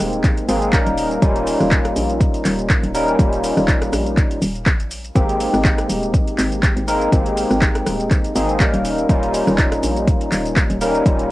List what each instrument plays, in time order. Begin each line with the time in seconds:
Already playing: tine electric piano G#3 A#3 C4 D#4 G4
0.00 fm bass D#1, cross-stick, open hi-hat, shaker
0.13 closed hi-hat, shaker
0.24 kick, clap, closed hi-hat, shaker
0.37 closed hi-hat, shaker
0.48 fm bass G#1, tine electric piano G#3 A#3 C4 D#4 G#4, open hi-hat, shaker
0.62 closed hi-hat, shaker
0.73 tine electric piano G3 A#3 C#4 D#4 A#4, kick, clap, closed hi-hat, shaker
0.87 fm bass D#1, closed hi-hat, shaker
0.98 open hi-hat, shaker
1.11 closed hi-hat, shaker
1.22 fm bass D#1, tine electric piano G3 A#3 C#4 D#4 F4, kick, closed hi-hat, shaker
1.36 closed hi-hat, shaker
1.47 open hi-hat, shaker
1.60 fm bass D#1, cross-stick, shaker
1.71 kick, clap, closed hi-hat, shaker
1.85 cross-stick, closed hi-hat, shaker
1.96 fm bass A#1, open hi-hat, shaker
2.10 closed hi-hat, shaker
2.21 kick, closed hi-hat, shaker
2.34 closed hi-hat, shaker
2.45 fm bass D#1, clap, open hi-hat, shaker
2.59 closed hi-hat, shaker
2.70 kick, clap, closed hi-hat, shaker
2.83 fm bass D#1, closed hi-hat, shaker
2.94 tine electric piano G3 A#3 C#4 D#4 A#4, open hi-hat, shaker
3.08 closed hi-hat, shaker
3.19 fm bass D#1, tine electric piano G3 A#3 C#4 F4, kick, closed hi-hat, shaker
3.33 closed hi-hat, shaker
3.44 open hi-hat, shaker
3.57 fm bass D#1, cross-stick, shaker
3.68 kick, clap, closed hi-hat, shaker
3.82 cross-stick, closed hi-hat, shaker
3.93 fm bass A#1, cross-stick, open hi-hat, shaker
4.06 closed hi-hat, shaker
4.17 kick, clap, closed hi-hat, shaker
4.31 closed hi-hat, shaker
4.42 fm bass D#1, open hi-hat, shaker
4.55 closed hi-hat, shaker
4.66 kick, clap, closed hi-hat, shaker
4.80 fm bass A#1, closed hi-hat, shaker
4.91 open hi-hat, shaker
5.05 closed hi-hat, shaker
5.15 fm bass G#1, tine electric piano G#3 A#3 C4 D#4 G4, kick, closed hi-hat, shaker
5.29 closed hi-hat, shaker
5.40 open hi-hat, shaker
5.54 fm bass G#1, cross-stick, shaker
5.65 kick, clap, closed hi-hat, shaker
5.78 cross-stick, closed hi-hat, shaker
5.90 fm bass D#1, open hi-hat, shaker
6.03 closed hi-hat, shaker
6.14 kick, closed hi-hat, shaker
6.28 closed hi-hat, shaker
6.39 fm bass G#1, clap, open hi-hat, shaker
6.52 closed hi-hat, shaker
6.63 kick, clap, closed hi-hat, shaker
6.77 fm bass G#1, closed hi-hat, shaker
6.88 tine electric piano G#3 A#3 C4 D#4 A#4, open hi-hat, shaker
7.01 closed hi-hat, shaker
7.12 fm bass G#1, tine electric piano C4 D#4 G4, kick, closed hi-hat, shaker
7.26 closed hi-hat, shaker
7.37 open hi-hat, shaker
7.50 fm bass G#1, cross-stick, shaker
7.61 kick, clap, closed hi-hat, shaker
7.75 cross-stick, closed hi-hat, shaker
7.86 fm bass D#1, cross-stick, open hi-hat, shaker
8.00 closed hi-hat, shaker
8.11 kick, clap, closed hi-hat, shaker
8.24 closed hi-hat, shaker
8.35 fm bass G#1, tine electric piano G#3 A#3 C4 D#4 G#4, open hi-hat, shaker
8.49 closed hi-hat, shaker
8.60 tine electric piano G3 A#3 C#4 D#4 A#4, kick, clap, closed hi-hat, shaker
8.73 fm bass D#1, closed hi-hat, shaker
8.85 open hi-hat, shaker
8.98 closed hi-hat, shaker
9.09 fm bass D#1, tine electric piano G3 A#3 C#4 D#4 F4, kick, closed hi-hat, shaker
9.23 closed hi-hat, shaker
9.34 open hi-hat, shaker
9.47 fm bass D#1, cross-stick, shaker
9.58 kick, clap, closed hi-hat, shaker
9.72 cross-stick, closed hi-hat, shaker
9.83 fm bass A#1, open hi-hat, shaker
9.96 closed hi-hat, shaker
10.07 kick, closed hi-hat, shaker
10.21 closed hi-hat, shaker
10.32 fm bass D#1, clap, open hi-hat, shaker
10.46 closed hi-hat, shaker
10.56 kick, clap, closed hi-hat, shaker
10.70 fm bass D#1, closed hi-hat, shaker
10.81 tine electric piano G3 A#3 C#4 D#4 A#4, open hi-hat, shaker
10.95 closed hi-hat, shaker
11.06 fm bass D#1, tine electric piano G3 A#3 C#4 D#4 F4, kick, closed hi-hat, shaker
11.19 closed hi-hat, shaker